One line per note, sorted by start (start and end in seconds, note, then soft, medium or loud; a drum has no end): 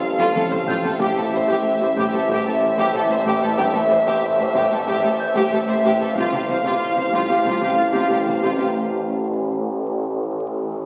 0.00 0.96 A1 medium
0.00 1.00 A4 soft
0.00 0.97 C5 soft
0.00 0.97 F5 soft
0.00 1.01 F5 soft
0.00 0.96 C7 soft
0.18 0.25 F2 medium
0.18 0.34 F4 medium
0.18 0.33 A4 medium
0.18 taiko medium
0.35 0.42 F1 soft
0.35 0.42 F2 soft
0.35 0.41 A4 soft
0.35 0.41 A4 medium
0.35 taiko high medium
0.51 0.58 F2 soft
0.51 0.57 A4 soft
0.51 0.58 C5 soft
0.51 taiko low-mid medium
0.67 0.74 F1 medium
0.67 0.74 F2 medium
0.67 0.84 F4 medium
0.67 0.83 A4 medium
0.67 2.57 G5 soft
0.67 2.57 G6 soft
0.67 taiko mid medium
0.84 0.90 F2 soft
0.84 0.90 A4 medium
0.84 0.92 A4 soft
0.84 taiko low medium
0.99 6.12 A1 medium
0.99 1.07 A1 medium
0.99 1.07 A2 medium
0.99 1.14 G4 medium
0.99 6.15 G4 soft
0.99 1.16 G4 medium
0.99 6.13 C5 soft
0.99 6.17 E5 soft
0.99 6.13 E5 medium
0.99 taiko medium
1.16 1.24 A2 soft
1.16 1.22 G4 soft
1.16 1.24 A4 soft
1.32 1.39 A1 soft
1.32 1.39 A2 soft
1.32 1.39 G4 soft
1.32 1.41 C5 medium
1.48 1.56 A2 medium
1.48 1.63 G4 medium
1.48 1.65 G4 medium
1.48 taiko medium
1.80 1.87 A2 soft
1.80 1.87 G4 soft
1.80 1.89 C5 soft
1.96 2.03 A1 medium
1.96 2.03 A2 medium
1.96 2.11 G4 medium
1.96 2.13 G4 medium
1.96 taiko medium
2.12 2.19 A2 soft
2.12 2.19 G4 soft
2.12 2.21 A4 soft
2.28 2.35 A1 medium
2.28 2.35 A2 medium
2.28 2.44 G4 medium
2.28 taiko medium
2.32 2.46 G4 medium
2.45 2.52 A2 soft
2.45 2.52 G4 medium
2.45 2.53 A4 soft
2.77 2.84 A2 medium
2.77 2.92 G4 medium
2.77 2.93 G4 medium
2.77 taiko medium
2.93 3.00 A1 soft
2.93 3.00 A2 soft
2.93 3.00 G4 soft
2.93 3.02 A4 medium
3.09 3.16 A2 soft
3.09 3.16 G4 soft
3.09 3.17 C5 soft
3.25 3.32 A1 medium
3.25 3.32 A2 medium
3.25 3.40 G4 medium
3.25 3.42 G4 medium
3.41 3.49 A2 soft
3.41 3.48 G4 soft
3.41 3.49 A4 soft
3.57 3.65 A1 medium
3.57 3.65 A2 medium
3.57 3.72 G4 medium
3.57 3.73 G4 medium
3.57 taiko medium
3.73 3.81 A2 soft
3.73 3.80 G4 soft
3.73 3.80 A4 soft
3.89 3.97 A1 soft
3.89 3.97 A2 soft
3.89 3.96 G4 soft
3.89 3.97 C5 soft
4.06 4.13 A2 medium
4.06 4.21 G4 medium
4.06 4.22 G4 medium
4.06 taiko medium
4.37 4.45 A2 soft
4.37 4.44 G4 soft
4.37 4.47 C5 soft
4.54 4.61 A1 medium
4.54 4.61 A2 medium
4.54 4.69 G4 medium
4.54 4.71 G4 medium
4.54 taiko medium
4.70 4.78 A2 soft
4.70 4.77 G4 soft
4.70 4.80 A4 soft
4.86 4.94 A1 medium
4.86 4.94 A2 medium
4.86 5.02 G4 medium
4.86 5.04 G4 medium
4.86 taiko medium
5.03 5.10 A2 soft
5.03 5.09 G4 soft
5.03 5.11 A4 soft
5.20 7.09 G6 soft
5.35 5.42 A2 medium
5.35 5.51 G4 medium
5.35 taiko medium
5.51 5.58 A1 soft
5.51 5.58 A2 soft
5.51 5.59 G4 soft
5.51 5.59 A4 medium
5.67 5.74 A2 soft
5.67 5.74 G4 soft
5.67 5.75 C5 soft
5.84 5.90 A1 medium
5.84 5.90 A2 medium
5.84 5.99 G4 medium
5.84 6.00 G4 medium
6.00 6.07 A2 soft
6.00 6.07 G4 soft
6.00 6.07 A4 soft
6.15 10.86 A1 medium
6.15 6.22 C2 medium
6.15 6.22 C3 medium
6.15 6.33 F4 medium
6.15 6.30 G4 medium
6.15 8.70 G4 soft
6.15 8.71 C5 soft
6.15 8.75 F5 soft
6.15 8.75 F5 medium
6.15 taiko medium
6.32 6.39 C3 soft
6.32 6.38 G4 soft
6.32 6.40 G4 soft
6.48 6.55 C2 soft
6.48 6.55 C3 soft
6.48 6.55 G4 soft
6.48 6.56 C5 soft
6.64 6.71 C3 medium
6.64 6.80 F4 medium
6.64 6.80 G4 medium
6.64 taiko medium
6.96 7.03 C3 soft
6.96 7.03 G4 soft
6.96 7.05 C5 soft
7.13 7.20 C2 medium
7.13 7.19 C3 medium
7.13 7.29 F4 medium
7.13 7.27 G4 medium
7.13 taiko medium
7.29 7.35 C3 soft
7.29 7.35 G4 soft
7.29 7.38 G4 soft
7.45 7.52 C2 soft
7.45 7.52 C3 soft
7.45 7.62 F4 medium
7.45 7.60 G4 medium
7.45 taiko medium
7.61 7.67 C3 soft
7.61 7.67 G4 soft
7.61 7.71 G4 soft
7.78 8.70 A6 soft
7.93 8.00 C3 medium
7.93 8.07 G4 medium
7.93 taiko medium
7.97 8.11 F4 soft
8.08 8.17 C2 soft
8.08 8.16 C3 soft
8.08 8.15 G4 soft
8.13 8.19 G4 soft
8.26 8.32 C3 soft
8.26 8.32 G4 soft
8.26 8.35 C5 soft
8.41 8.49 C2 soft
8.41 8.49 C3 soft
8.41 8.58 F4 soft
8.41 8.56 G4 soft
8.58 8.65 C3 soft
8.58 8.64 G4 soft
8.58 8.67 G4 soft